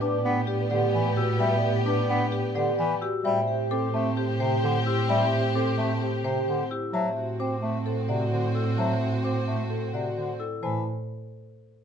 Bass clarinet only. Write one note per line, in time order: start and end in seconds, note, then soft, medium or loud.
0.01 0.17 D4 medium
0.25 0.41 B3 loud
0.71 0.87 D3 medium
0.94 1.10 E3 loud
1.40 1.56 G3 loud
1.86 2.02 D4 medium
2.09 2.25 B3 loud
2.56 2.72 D3 medium
2.79 2.95 E3 loud
3.25 3.41 G3 loud
3.71 3.87 C4 medium
3.94 4.10 A3 loud
4.40 4.56 C3 medium
4.63 4.79 D3 loud
5.09 5.25 G3 loud
5.55 5.71 C4 medium
5.78 5.94 A3 loud
6.24 6.40 C3 medium
6.47 6.63 D3 loud
6.93 7.09 F#3 loud
7.40 7.56 C4 medium
7.63 7.79 A3 medium
8.09 8.25 C3 medium
8.32 8.48 D3 medium
8.78 8.94 F#3 medium
9.25 9.41 C4 medium
9.47 9.63 A3 medium
9.93 10.09 C3 medium
10.16 10.32 D3 medium
10.63 10.84 E3 medium